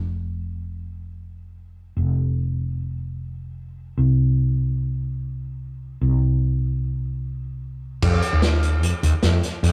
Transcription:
Already playing: fretless electric bass F1
1.97 fretless electric bass F1
3.97 fretless electric bass C2
6.01 fretless electric bass C2
8.02 fretless electric bass F2, kick, crash
8.22 closed hi-hat
8.33 fretless electric bass D#2
8.42 snare, closed hi-hat
8.63 closed hi-hat
8.83 fretless electric bass F2, closed hi-hat
9.03 fretless electric bass D#2, closed hi-hat
9.23 fretless electric bass F2, snare, closed hi-hat
9.43 snare, closed hi-hat
9.63 fretless electric bass F2, snare, closed hi-hat

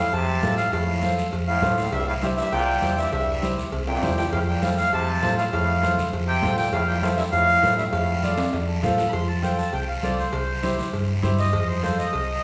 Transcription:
Already playing: trombone A2, accordion F5
0.12 fingered electric bass F2, trombone C3, accordion A5, cowbell, long guiro
0.42 fingered electric bass A2, upright piano F4 A4 C5, high conga, low timbale, short guiro
0.57 trombone A2, accordion F5, short guiro
0.72 fingered electric bass F2, trombone A2, accordion F5, cowbell, high conga, long guiro
1.02 upright piano F4 A4 C5, high conga, short guiro
1.18 short guiro
1.32 fingered electric bass F2, cowbell, high conga, long guiro
1.47 trombone A2, accordion F5
1.62 fingered electric bass A2, upright piano F4 A4 C5, high conga, low conga, short guiro
1.77 trombone A2, accordion F5, short guiro
1.92 fingered electric bass C2, trombone G2, accordion E5, cowbell, high conga, long guiro
2.07 trombone A2, accordion F5
2.22 trombone G2, upright piano E4 G4 C5, accordion E5, high conga, short guiro
2.36 trombone G2, accordion E5, short guiro
2.51 fingered electric bass C2, trombone A#2, accordion G5, cowbell, high conga, long guiro
2.81 fingered electric bass E2, upright piano E4 G4 C5, high conga, short guiro
2.97 trombone G2, accordion E5, short guiro
3.12 fingered electric bass C2, trombone G2, accordion E5, cowbell, high conga, long guiro
3.42 upright piano E4 G4 C5, high conga, short guiro
3.58 low conga, short guiro
3.72 fingered electric bass C2, cowbell, high conga, long guiro
3.87 trombone A#2, accordion G5, high timbale
3.97 high timbale
4.02 fingered electric bass E2, upright piano E4 G4 C5, high conga, low conga, short guiro
4.07 low timbale
4.17 trombone A#2, accordion G5, low timbale, short guiro
4.33 fingered electric bass F2, trombone A2, accordion F5, cowbell, high conga, long guiro
4.47 trombone A#2, accordion G5
4.62 trombone A2, upright piano F4 A4 C5, accordion F5, high conga, short guiro
4.78 trombone A2, accordion F5, short guiro
4.92 fingered electric bass F2, trombone C3, accordion A5, cowbell, high conga, long guiro
5.22 fingered electric bass A2, upright piano F4 A4 C5, high conga, low timbale, short guiro
5.38 trombone A2, accordion F5, short guiro
5.53 fingered electric bass F2, trombone A2, accordion F5, cowbell, high conga, long guiro
5.82 upright piano F4 A4 C5, high conga, short guiro
5.98 low conga, short guiro
6.13 fingered electric bass F2, cowbell, high conga, long guiro
6.27 trombone C3, accordion G5
6.42 fingered electric bass A2, upright piano F4 A4 C5, high conga, low conga, low timbale, short guiro
6.57 trombone A#2, accordion G5, short guiro
6.72 fingered electric bass F2, trombone A2, accordion F5, cowbell, high conga, long guiro
6.86 trombone A#2, accordion G5
7.01 trombone A2, upright piano F4 A4 C5, accordion F5, high conga, short guiro
7.16 trombone G2, accordion E5, short guiro
7.31 fingered electric bass F2, trombone A2, accordion F5, cowbell, long guiro
7.63 fingered electric bass A2, upright piano F4 A4 C5, high conga, low timbale, short guiro
7.76 trombone G2, accordion E5, short guiro
7.92 fingered electric bass F2, trombone A2, accordion F5, cowbell, high conga, long guiro
8.23 upright piano F4 A4 D5, high conga, short guiro
8.38 high timbale, short guiro
8.53 fingered electric bass F2, cowbell, high timbale, long guiro
8.68 upright piano A5
8.83 fingered electric bass A2, upright piano F4 A4 C5 F5, high conga, low conga, low timbale, short guiro
8.98 low timbale, short guiro
9.09 accordion B5
9.13 fingered electric bass F2, accordion C6, cowbell, high conga, long guiro
9.28 accordion A5
9.43 upright piano F4 A4 C5, accordion G5, high conga, short guiro
9.58 accordion A5, short guiro
9.73 fingered electric bass C2, accordion G5, cowbell, high conga, long guiro
9.88 accordion F5
10.03 fingered electric bass C2, upright piano F4 A4 C5, accordion D5, high conga, short guiro
10.18 accordion C5, short guiro
10.33 fingered electric bass C2, cowbell, long guiro
10.63 upright piano E4 G4 C5, high conga, short guiro
10.78 low conga, short guiro
10.93 fingered electric bass G2, cowbell, high conga, long guiro
11.23 fingered electric bass G2, upright piano E4 G4 C5, high conga, low conga, short guiro
11.39 accordion D#5, short guiro
11.53 fingered electric bass F2, cowbell, high conga, long guiro
11.68 accordion C5
11.83 upright piano F4 A4 C5, accordion C5, high conga, short guiro
11.99 accordion D#5, short guiro
12.13 fingered electric bass C2, cowbell, high conga, long guiro

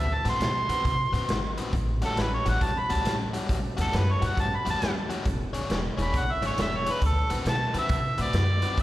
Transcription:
Already playing: upright bass D2
0.00 harmonica E5
0.14 harmonica A5
0.25 upright bass A2, overdriven electric guitar D3 C4 F#4 B4, snare, closed hi-hat
0.29 harmonica C6
0.40 upright bass B2, snare, closed hi-hat
0.69 upright bass D3, overdriven electric guitar D3 C4 F#4 B4, closed hi-hat
0.85 upright bass C3, kick, closed hi-hat
1.13 upright bass A2, overdriven electric guitar D3 C4 F#4 B4, closed hi-hat
1.28 upright bass G#1, snare, closed hi-hat
1.58 overdriven electric guitar D3 C4 F#4 B4, closed hi-hat
1.73 upright bass A1, kick, closed hi-hat
2.02 overdriven electric guitar A2 G3 C#4 F#4, harmonica A4, snare, closed hi-hat
2.17 upright bass A1, harmonica B4, snare, closed hi-hat
2.34 harmonica C#5
2.45 upright bass A1, overdriven electric guitar A2 G3 C#4 F#4, harmonica F#5, closed hi-hat
2.61 upright bass E2, harmonica A5, kick, closed hi-hat
2.78 harmonica B5
2.89 upright bass C#2, overdriven electric guitar A2 G3 C#4 F#4, harmonica A5, closed hi-hat
3.05 upright bass A1, snare, closed hi-hat
3.33 overdriven electric guitar A2 G3 C#4 F#4, closed hi-hat
3.49 upright bass A1, kick, closed hi-hat
3.77 upright bass E2, overdriven electric guitar A2 G3 C#4 F#4, snare, closed hi-hat
3.81 harmonica A4
3.93 upright bass F#2, harmonica B4, snare, closed hi-hat
4.11 harmonica C#5
4.22 upright bass A2, overdriven electric guitar A2 G3 C#4 F#4, closed hi-hat
4.26 harmonica F#5
4.37 upright bass G2, harmonica A5, kick, closed hi-hat
4.56 harmonica B5
4.65 upright bass E2, overdriven electric guitar A2 G3 C#4 F#4, closed hi-hat
4.70 harmonica A5
4.82 upright bass D#2, snare, closed hi-hat
5.09 overdriven electric guitar A2 G3 C#4 F#4, closed hi-hat
5.25 upright bass E1, kick, closed hi-hat
5.53 overdriven electric guitar E3 D4 G#4 C#5, closed hi-hat
5.70 upright bass E1, snare, closed hi-hat
5.97 upright bass E1, overdriven electric guitar E3 D4 G#4 C#5, closed hi-hat
6.02 harmonica B5
6.14 upright bass B1, harmonica F#5, kick, closed hi-hat
6.32 harmonica E5
6.42 upright bass G#1, overdriven electric guitar E3 D4 G#4 C#5, closed hi-hat
6.46 harmonica C#5
6.58 upright bass E1, harmonica E5, snare, closed hi-hat
6.76 harmonica C#5
6.86 overdriven electric guitar E3 D4 G#4 C#5, closed hi-hat
6.91 harmonica B4
7.02 upright bass D2, harmonica A4, kick, closed hi-hat
7.30 upright bass A2, overdriven electric guitar D3 C4 F#4 B4, closed hi-hat
7.46 upright bass B2, harmonica A5, snare, closed hi-hat
7.74 upright bass D3, overdriven electric guitar D3 C4 F#4 B4, closed hi-hat
7.78 harmonica E5
7.89 upright bass C3, kick, closed hi-hat
8.18 upright bass A2, overdriven electric guitar D3 C4 F#4 B4, closed hi-hat
8.22 harmonica D5
8.33 upright bass F#2, snare, closed hi-hat
8.62 overdriven electric guitar D3 C4 F#4 B4, closed hi-hat
8.78 upright bass A1, kick, closed hi-hat

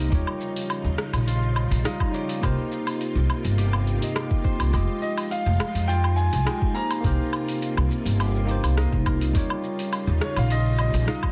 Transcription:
Already playing: tine electric piano A#3 D#4 G4 C5, harp D#4 G4 A#4, string machine D#4
0.09 upright bass D#2, string machine C#3 F3 F4, tine electric piano G3 D#4 F4, harp G4, kick, open hi-hat, shaker
0.14 tine electric piano C#5
0.27 low woodblock
0.41 shaker
0.56 open hi-hat, shaker
0.70 open hi-hat, low woodblock, shaker
0.84 upright bass D#2, shaker
0.98 cross-stick, shaker
1.13 upright bass A#1, open hi-hat, low woodblock, shaker
1.27 harp F4, open hi-hat, shaker
1.43 shaker
1.56 low woodblock, shaker
1.71 upright bass A#1, open hi-hat, shaker
1.84 tine electric piano G3 D#4 F4 F5, harp D#4, cross-stick, open hi-hat, shaker
2.00 kick, low woodblock
2.12 tine electric piano G3 D#4 F4 C#5, harp G4, shaker
2.29 open hi-hat, shaker
2.40 upright bass C2, string machine C3 A#3, tine electric piano A#3 D#4 G4, harp A#4, kick, open hi-hat, low woodblock, shaker
2.45 tine electric piano C5
2.72 shaker
2.87 open hi-hat, low woodblock, shaker
3.01 open hi-hat, shaker
3.15 upright bass C2, shaker
3.30 low woodblock, shaker
3.45 upright bass G1, open hi-hat, shaker
3.58 harp G4, open hi-hat, shaker
3.73 low woodblock, shaker
3.87 shaker
3.98 tine electric piano A#3 D#4 G4, open hi-hat, shaker
4.04 tine electric piano D#5
4.15 harp G4, cross-stick, open hi-hat, low woodblock, shaker
4.31 kick, shaker
4.44 harp C5, kick, shaker
4.60 upright bass C2, open hi-hat, low woodblock, shaker
4.70 upright bass F1, string machine F3 G#3, tine electric piano G#3 F4 G4, harp G4, kick, open hi-hat, low woodblock, shaker
4.76 tine electric piano D#5
5.02 grand piano D#5, shaker
5.18 open hi-hat, low woodblock, shaker
5.31 grand piano F5, open hi-hat, shaker
5.46 upright bass F1, shaker
5.60 cross-stick, low woodblock, shaker
5.75 upright bass F2, open hi-hat, shaker
5.88 harp F4, grand piano G5, open hi-hat, shaker
6.04 low woodblock, shaker
6.16 grand piano G#5, shaker
6.33 upright bass C2, open hi-hat, shaker
6.45 tine electric piano G#3 F4 G4 G5, harp D#4, cross-stick, open hi-hat, low woodblock, shaker
6.62 kick
6.74 string machine C3 A#3, tine electric piano A#3 D#4 G4 C5, harp A#4, grand piano A#5, shaker
6.91 open hi-hat, low woodblock, shaker
7.01 upright bass C2, tine electric piano A#3 D#4 G4, harp A#4, kick, open hi-hat, shaker
7.06 tine electric piano C5
7.33 low woodblock, shaker
7.48 open hi-hat, shaker
7.62 open hi-hat, shaker
7.77 upright bass C2, low woodblock, shaker
7.91 shaker
8.05 upright bass G1, open hi-hat, shaker
8.20 harp G4, open hi-hat, low woodblock, shaker
8.35 shaker
8.45 tine electric piano A#3 D#4 G4, shaker
8.51 tine electric piano C5
8.63 upright bass C2, open hi-hat, low woodblock, shaker
8.77 harp D#4, cross-stick, open hi-hat, shaker
8.92 upright bass C2, kick
9.06 harp A#4, kick, low woodblock, shaker
9.21 open hi-hat, shaker
9.32 upright bass D#2, tine electric piano G3 D#4 F4, string machine G3 D#4 F4, harp G4, kick, open hi-hat, shaker
9.36 string machine C#3, tine electric piano C#5
9.50 low woodblock
9.64 shaker
9.79 open hi-hat, shaker
9.93 open hi-hat, low woodblock, shaker
10.07 upright bass D#2, shaker
10.21 grand piano C#5, cross-stick, shaker
10.36 upright bass A#1, grand piano F5, open hi-hat, low woodblock, shaker
10.50 harp F4, grand piano D#5, open hi-hat, shaker
10.65 shaker
10.79 grand piano D#5, low woodblock, shaker
10.94 upright bass A#1, open hi-hat, shaker
11.06 tine electric piano G3 D#4 F4 F5, harp D#4, cross-stick, open hi-hat, shaker
11.23 kick, low woodblock

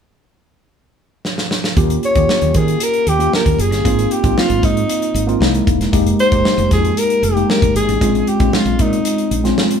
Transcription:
1.25 snare
1.38 snare
1.51 snare
1.64 snare
1.76 fretless electric bass D#2, tine electric piano A#3 C#4 F4 G4, kick, closed hi-hat
1.90 closed hi-hat
2.03 alto saxophone C#5, closed hi-hat
2.15 fretless electric bass D#2, tine electric piano A#3 C#4 F4 G4, kick, closed hi-hat
2.29 snare
2.42 fretless electric bass D#2, closed hi-hat
2.54 fretless electric bass D#3, alto saxophone G#4, kick, closed hi-hat
2.68 closed hi-hat
2.80 alto saxophone A#4, closed hi-hat
2.93 closed hi-hat
3.07 fretless electric bass D#2, alto saxophone G4, closed hi-hat
3.19 tine electric piano A#3 C#4 F4 G4, closed hi-hat
3.33 alto saxophone A#4, snare
3.46 fretless electric bass D#2, kick, closed hi-hat
3.58 fretless electric bass F#1, alto saxophone G#4, closed hi-hat
3.71 fretless electric bass G1, snare, closed hi-hat
3.84 fretless electric bass G#1, tine electric piano A#3 C4 D#4 F4, kick, closed hi-hat
3.99 closed hi-hat
4.11 alto saxophone G4, closed hi-hat
4.23 fretless electric bass G#1, tine electric piano A#3 C4 D#4 F4, kick, closed hi-hat
4.38 alto saxophone F4, snare
4.50 fretless electric bass G#1, closed hi-hat
4.63 fretless electric bass G#2, alto saxophone D#4, kick, closed hi-hat
4.77 closed hi-hat
4.89 closed hi-hat
5.02 closed hi-hat
5.14 fretless electric bass G#1, closed hi-hat
5.27 tine electric piano A#3 C4 D#4 F4, closed hi-hat
5.40 fretless electric bass C2, tine electric piano G#3 A#3 D#4 E4, snare
5.54 closed hi-hat
5.67 fretless electric bass E1, kick, closed hi-hat
5.81 snare, closed hi-hat
5.92 fretless electric bass F1, tine electric piano G#3 A#3 D#4 G4, kick, closed hi-hat
6.06 closed hi-hat
6.19 alto saxophone C5, closed hi-hat
6.31 fretless electric bass F1, tine electric piano G#3 A#3 D#4 G4, kick, closed hi-hat
6.45 snare
6.58 fretless electric bass F1, closed hi-hat
6.71 fretless electric bass F2, alto saxophone G#4, kick, snare, closed hi-hat
6.85 closed hi-hat
6.97 alto saxophone A#4, closed hi-hat
7.10 closed hi-hat
7.23 fretless electric bass F1, alto saxophone G4, closed hi-hat
7.36 tine electric piano G#3 A#3 D#4 G4, closed hi-hat
7.50 alto saxophone A#4, snare
7.62 fretless electric bass F1, kick, closed hi-hat
7.75 fretless electric bass G#1, alto saxophone G#4, closed hi-hat
7.89 fretless electric bass A1, closed hi-hat
8.01 fretless electric bass A#1, tine electric piano G#3 C4 C#4 F4, kick, closed hi-hat
8.15 closed hi-hat
8.27 alto saxophone G4, closed hi-hat
8.40 fretless electric bass A#1, tine electric piano G#3 C4 C#4 F4, kick, closed hi-hat
8.53 alto saxophone F4, snare
8.65 fretless electric bass A#1, closed hi-hat
8.79 fretless electric bass A#2, alto saxophone D#4, kick, closed hi-hat
8.93 closed hi-hat
9.05 closed hi-hat
9.18 closed hi-hat
9.31 fretless electric bass A#1, closed hi-hat
9.44 tine electric piano G#3 C4 C#4 F4, snare, closed hi-hat
9.58 snare
9.71 closed hi-hat

